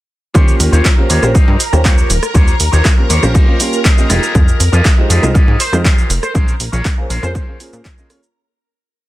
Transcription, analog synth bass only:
0.35 D#2
0.60 D#2
0.73 D#2
1.10 D#2
1.23 A#1
1.48 G2
1.73 D#2
2.10 D#1
2.35 D#2
2.60 D#2
2.73 D#2
3.10 D#2
3.23 A#1
4.10 F1
4.35 F2
4.60 F2
4.73 F2
5.10 F2
5.23 C2
5.48 G#2
5.73 F2
6.10 F1
6.35 A#1
6.60 A#1
6.73 A#1
7.10 A#1
7.23 F2
7.73 A#2

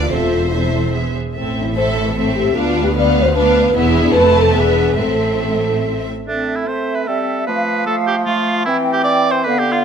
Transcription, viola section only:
Already playing: D4
0.09 C4 A4
0.52 C4 A4
0.94 B3 G#4
1.36 C4 A4
1.76 C4 A4
2.17 C4 A4
2.57 B3 B4
2.96 B3 B4
3.36 B3 B4
3.75 E4 G#4
4.15 C4 A4
4.56 D4 B4
4.99 C4 A4

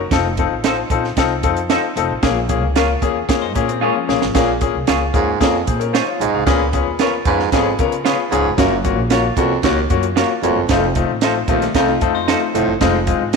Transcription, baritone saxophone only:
4.35 A#2
5.15 G#2
5.40 F2
6.20 G#2
6.46 A#2
7.26 G#2
7.52 F2
8.31 G#2
8.58 F#2
9.37 F2
9.63 D#2
10.43 F2
10.69 F2
11.49 D#2
11.75 F2
12.54 A2
12.81 F2

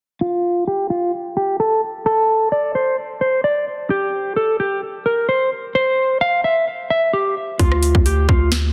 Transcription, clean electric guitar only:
0.21 F4
0.67 G4
0.90 F4
1.37 G4
1.60 A4
2.06 A4
2.52 D5
2.75 C5
3.21 C5
3.44 D5
3.90 G4
4.36 A4
4.60 G4
5.06 A#4
5.29 C5
5.75 C5
6.21 F5
6.44 E5
6.90 E5
7.13 G4
7.59 F4
8.06 G4
8.29 F4

